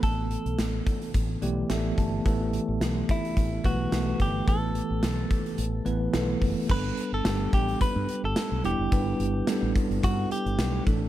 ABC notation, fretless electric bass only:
X:1
M:4/4
L:1/16
Q:"Swing 16ths" 1/4=108
K:Glyd
V:1 name="Fretless electric bass" clef=bass
A,,,3 B,,, A,,,2 z2 A,,,2 B,,,2 A,,,2 G,,,2 | A,,,3 A,,, B,,,2 z2 A,,,2 B,,,2 B,,,2 G,,,2 | A,,,3 A,,, B,,,2 z2 A,,,2 A,,,2 B,,,2 F,,, z | G,,,2 z G,,, G,,,2 A,,,2 z G,, z G,,, z B,,, E,,, F,,, |
G,,,2 G,,,2 z A,,, z G,,, G,,2 z G,,, B,,,2 A,,,2 |]